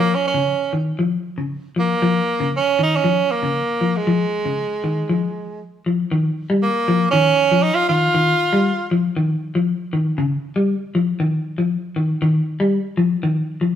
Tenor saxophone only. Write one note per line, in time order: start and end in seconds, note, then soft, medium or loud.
0.00 0.16 A#3 loud
0.15 0.25 C#4 medium
0.27 0.73 C#4 medium
1.79 2.51 A#3 medium
2.57 2.79 C#4 loud
2.83 2.97 D#4 medium
2.96 3.33 C#4 loud
3.31 3.99 A#3 medium
3.97 5.62 G#3 medium
6.63 7.10 A#3 medium
7.11 7.64 C#4 loud
7.63 7.76 D#4 loud
7.75 7.89 F4 loud
7.89 8.87 F4 loud